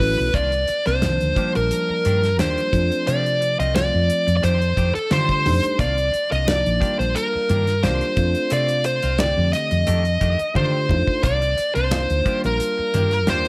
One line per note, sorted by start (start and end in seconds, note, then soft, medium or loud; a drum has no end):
0.00 0.17 A1 medium
0.00 0.29 E3 medium
0.00 0.29 F#3 medium
0.00 0.29 A3 medium
0.00 0.30 C#4 medium
0.00 0.37 B4 medium
0.00 muted clean electric guitar stroke soft
0.00 kick medium
0.00 snare soft
0.00 open hi-hat medium
0.17 0.33 B1 medium
0.17 muted clean electric guitar stroke soft
0.34 0.65 C2 medium
0.34 0.52 D#3 medium
0.34 0.52 A#3 medium
0.34 0.52 D4 medium
0.34 0.51 F4 medium
0.34 0.87 D5 medium
0.34 kick medium
0.34 closed hi-hat medium
0.34 muted conga soft
0.52 muted clean electric guitar stroke soft
0.52 closed hi-hat soft
0.68 muted clean electric guitar stroke soft
0.68 muted fretless electric bass stroke soft
0.68 closed hi-hat soft
0.86 1.18 C2 medium
0.86 1.02 A#3 soft
0.86 1.02 D4 soft
0.86 1.02 F4 medium
0.86 1.51 C5 medium
0.86 snare soft
0.86 closed hi-hat soft
1.01 1.36 D#3 medium
1.01 1.34 F3 medium
1.01 1.35 A#3 medium
1.01 1.35 D4 medium
1.01 muted clean electric guitar stroke soft
1.01 snare medium
1.01 closed hi-hat medium
1.01 high conga medium
1.21 1.36 D2 medium
1.21 closed hi-hat soft
1.35 1.58 D#3 medium
1.35 2.28 F3 medium
1.35 2.28 G3 medium
1.35 2.28 A#3 medium
1.35 1.58 A#3 medium
1.35 2.29 D4 medium
1.35 1.58 D4 medium
1.35 1.59 G4 medium
1.35 kick medium
1.35 closed hi-hat medium
1.55 1.70 A#1 medium
1.55 2.36 A#4 medium
1.55 closed hi-hat soft
1.71 closed hi-hat medium
1.71 muted conga soft
1.89 muted clean electric guitar stroke soft
1.89 muted fretless electric bass stroke soft
2.05 2.40 G2 medium
2.05 2.23 D#3 medium
2.05 2.22 A#3 medium
2.05 2.22 D4 medium
2.05 2.22 G4 medium
2.05 closed hi-hat medium
2.05 muted conga soft
2.23 muted clean electric guitar stroke soft
2.23 snare soft
2.23 closed hi-hat soft
2.37 2.56 D#2 medium
2.37 2.60 D#3 medium
2.37 2.69 F3 medium
2.37 2.69 G3 medium
2.37 2.69 A#3 medium
2.37 2.60 A#3 medium
2.37 2.70 D4 medium
2.37 2.60 D4 medium
2.37 2.60 G4 medium
2.37 3.10 C5 medium
2.37 snare medium
2.37 closed hi-hat medium
2.37 high conga soft
2.58 closed hi-hat soft
2.72 2.89 F2 medium
2.72 3.64 F3 medium
2.72 3.65 A3 medium
2.72 3.65 C4 medium
2.72 3.65 D4 medium
2.72 muted clean electric guitar stroke soft
2.72 kick medium
2.72 closed hi-hat medium
2.90 muted clean electric guitar stroke soft
2.90 closed hi-hat soft
3.06 3.56 C3 medium
3.06 3.25 F3 medium
3.06 3.24 A3 medium
3.06 3.24 C4 medium
3.06 3.24 F4 medium
3.06 3.56 D5 medium
3.06 closed hi-hat medium
3.06 muted conga soft
3.25 muted clean electric guitar stroke soft
3.25 closed hi-hat soft
3.41 muted clean electric guitar stroke soft
3.41 closed hi-hat soft
3.59 3.90 C2 medium
3.59 3.74 A3 soft
3.59 3.74 C4 soft
3.59 3.74 F4 soft
3.59 3.75 D#5 medium
3.59 closed hi-hat soft
3.74 4.43 F3 medium
3.74 4.43 A3 medium
3.74 4.43 C4 medium
3.74 4.44 F4 medium
3.74 4.35 D5 medium
3.74 snare medium
3.74 closed hi-hat medium
3.74 high conga medium
3.94 4.08 F2 medium
4.10 closed hi-hat medium
4.27 4.42 F2 medium
4.27 muted clean electric guitar stroke soft
4.27 closed hi-hat soft
4.37 4.43 D5 medium
4.43 4.74 F2 medium
4.43 4.61 D#3 medium
4.43 4.60 A3 medium
4.43 4.60 D4 medium
4.43 4.59 G4 medium
4.43 4.95 C5 medium
4.43 closed hi-hat medium
4.43 muted conga soft
4.61 muted clean electric guitar stroke soft
4.61 closed hi-hat soft
4.77 4.93 F2 medium
4.77 4.95 D#3 medium
4.77 4.95 A3 medium
4.77 4.94 D4 medium
4.77 4.94 G4 medium
4.77 kick medium
4.77 closed hi-hat medium
4.95 5.12 A4 medium
4.95 muted clean electric guitar stroke soft
4.95 muted fretless electric bass stroke soft
4.95 closed hi-hat soft
5.11 5.47 D3 medium
5.11 5.32 D#3 medium
5.11 5.42 G3 medium
5.11 5.33 A3 medium
5.11 5.42 A3 medium
5.11 5.33 D4 medium
5.11 5.42 D4 medium
5.11 5.43 F4 medium
5.11 5.33 G4 medium
5.11 5.80 C5 medium
5.11 snare loud
5.11 closed hi-hat medium
5.11 high conga medium
5.29 kick medium
5.29 closed hi-hat soft
5.45 5.62 F2 medium
5.45 5.79 G3 medium
5.45 5.79 A3 medium
5.45 5.80 D4 medium
5.45 5.80 D#4 medium
5.45 muted clean electric guitar stroke soft
5.45 open hi-hat medium
5.45 muted conga soft
5.45 low conga medium
5.63 muted clean electric guitar stroke soft
5.63 muted fretless electric bass stroke soft
5.63 closed hi-hat soft
5.78 6.10 C2 medium
5.78 5.97 D#3 medium
5.78 5.96 A#3 medium
5.78 5.96 D4 medium
5.78 5.96 F4 medium
5.78 6.28 D5 medium
5.78 kick medium
5.78 closed hi-hat medium
5.78 muted conga soft
5.97 muted clean electric guitar stroke soft
5.97 closed hi-hat soft
6.12 muted clean electric guitar stroke soft
6.12 closed hi-hat soft
6.30 6.62 C2 medium
6.30 6.45 A#3 soft
6.30 6.46 D4 soft
6.30 6.46 F4 soft
6.30 6.48 D#5 medium
6.30 closed hi-hat soft
6.46 6.81 F3 medium
6.46 6.80 A#3 medium
6.46 6.81 D4 medium
6.46 6.82 D#4 medium
6.46 6.99 D5 medium
6.46 muted clean electric guitar stroke soft
6.46 snare medium
6.46 closed hi-hat medium
6.46 high conga medium
6.66 6.80 A#1 medium
6.66 closed hi-hat soft
6.80 7.02 D#3 medium
6.80 7.73 G3 medium
6.80 7.02 A#3 medium
6.80 7.73 A#3 medium
6.80 7.02 D4 medium
6.80 7.73 D4 medium
6.80 7.74 F4 medium
6.80 7.02 G4 medium
6.80 kick medium
6.80 closed hi-hat medium
6.99 7.14 A#1 medium
6.99 7.16 C5 medium
6.99 closed hi-hat soft
7.15 7.85 A#4 medium
7.15 closed hi-hat medium
7.15 muted conga soft
7.33 muted clean electric guitar stroke soft
7.33 muted fretless electric bass stroke soft
7.49 7.86 G2 medium
7.49 7.67 D#3 soft
7.49 7.66 A#3 soft
7.49 7.66 D4 medium
7.49 7.66 G4 medium
7.49 closed hi-hat soft
7.49 muted conga soft
7.49 high conga medium
7.67 muted clean electric guitar stroke soft
7.67 snare soft
7.67 closed hi-hat soft
7.83 8.00 C2 medium
7.83 8.04 D#3 medium
7.83 8.14 G3 medium
7.83 8.05 A#3 medium
7.83 8.14 A#3 medium
7.83 8.05 D4 medium
7.83 8.14 D4 medium
7.83 8.14 F4 medium
7.83 8.05 G4 medium
7.83 8.53 C5 medium
7.83 snare medium
7.83 closed hi-hat medium
7.83 high conga medium
8.01 closed hi-hat soft
8.16 8.33 F2 medium
8.16 9.09 A3 medium
8.16 9.09 C4 medium
8.16 9.09 D4 medium
8.16 9.09 F4 medium
8.16 muted clean electric guitar stroke soft
8.16 kick medium
8.16 closed hi-hat medium
8.16 muted conga soft
8.34 muted clean electric guitar stroke soft
8.34 closed hi-hat soft
8.50 8.99 C3 medium
8.50 8.69 A3 medium
8.50 8.68 C4 medium
8.50 8.67 F4 medium
8.50 8.84 D5 medium
8.50 closed hi-hat medium
8.50 muted conga soft
8.68 muted clean electric guitar stroke soft
8.68 closed hi-hat soft
8.84 9.19 C5 medium
8.84 muted clean electric guitar stroke soft
8.84 closed hi-hat medium
9.02 9.34 C2 medium
9.02 9.17 C4 soft
9.02 9.18 F4 soft
9.02 closed hi-hat soft
9.18 9.88 D3 medium
9.18 9.87 A3 medium
9.18 9.87 C4 medium
9.18 9.88 G4 medium
9.18 9.53 D5 medium
9.18 muted clean electric guitar stroke soft
9.18 snare medium
9.18 closed hi-hat medium
9.18 high conga medium
9.37 9.52 F2 medium
9.53 10.56 D#5 medium
9.53 snare soft
9.53 closed hi-hat medium
9.71 9.86 F2 medium
9.71 muted clean electric guitar stroke soft
9.71 closed hi-hat soft
9.87 10.19 F2 loud
9.87 10.05 D#3 medium
9.87 10.04 A3 medium
9.87 10.04 D4 medium
9.87 10.04 G4 medium
9.87 closed hi-hat medium
9.87 muted conga soft
10.05 muted clean electric guitar stroke soft
10.05 closed hi-hat soft
10.21 10.38 F2 medium
10.21 10.39 D#3 medium
10.21 10.38 A3 medium
10.21 10.38 D4 medium
10.21 10.38 G4 medium
10.21 kick medium
10.21 closed hi-hat medium
10.39 muted clean electric guitar stroke soft
10.39 closed hi-hat soft
10.54 10.91 D3 medium
10.54 10.76 D#3 medium
10.54 10.85 A3 medium
10.54 10.77 A3 medium
10.54 10.86 D4 medium
10.54 10.77 D4 medium
10.54 10.86 F4 medium
10.54 10.86 G4 medium
10.54 10.77 G4 medium
10.54 11.24 C5 medium
10.54 kick medium
10.54 high conga medium
10.89 11.06 F2 medium
10.89 11.23 A3 medium
10.89 11.23 D4 medium
10.89 11.24 D#4 medium
10.89 11.24 F4 medium
10.89 muted clean electric guitar stroke soft
10.89 kick medium
10.89 muted conga soft
10.89 low conga medium
11.07 muted clean electric guitar stroke soft
11.07 kick medium
11.23 11.54 C2 medium
11.23 11.41 D#3 medium
11.23 11.41 A#3 medium
11.23 11.41 D4 medium
11.23 11.40 F4 medium
11.23 11.75 D5 medium
11.23 kick loud
11.23 closed hi-hat medium
11.23 muted conga soft
11.41 muted clean electric guitar stroke soft
11.41 closed hi-hat soft
11.57 muted clean electric guitar stroke soft
11.57 closed hi-hat medium
11.75 12.07 C2 medium
11.75 11.90 A#3 soft
11.75 11.90 D4 soft
11.75 11.90 F4 soft
11.75 12.40 C5 medium
11.75 closed hi-hat soft
11.91 12.24 A#3 medium
11.91 12.24 D4 medium
11.91 12.26 D#4 medium
11.91 12.25 F4 medium
11.91 muted clean electric guitar stroke soft
11.91 snare medium
11.91 closed hi-hat medium
11.91 high conga medium
12.10 12.24 D2 medium
12.10 closed hi-hat soft
12.24 12.47 D#3 medium
12.24 13.17 G3 medium
12.24 13.18 A#3 medium
12.24 12.47 A#3 medium
12.24 13.18 D4 medium
12.24 12.47 D4 medium
12.24 13.18 F4 medium
12.24 12.47 G4 medium
12.24 kick medium
12.24 closed hi-hat medium
12.44 12.59 A#1 medium
12.44 13.29 A#4 medium
12.44 closed hi-hat soft
12.60 closed hi-hat medium
12.60 muted conga soft
12.78 muted clean electric guitar stroke soft
12.78 muted fretless electric bass stroke soft
12.94 13.28 G2 medium
12.94 13.12 D#3 medium
12.94 13.11 A#3 medium
12.94 13.11 D4 medium
12.94 13.11 G4 medium
12.94 closed hi-hat medium
12.94 muted conga soft
12.94 high conga medium
13.11 muted clean electric guitar stroke soft
13.11 snare soft
13.11 closed hi-hat soft
13.27 13.44 D#2 medium
13.27 13.48 D#3 medium
13.27 13.48 G3 medium
13.27 13.48 A#3 medium
13.27 13.48 D4 medium
13.27 13.48 F4 medium
13.27 13.48 G4 medium
13.27 13.48 C5 medium
13.27 snare medium
13.27 closed hi-hat medium
13.27 high conga medium
13.45 closed hi-hat soft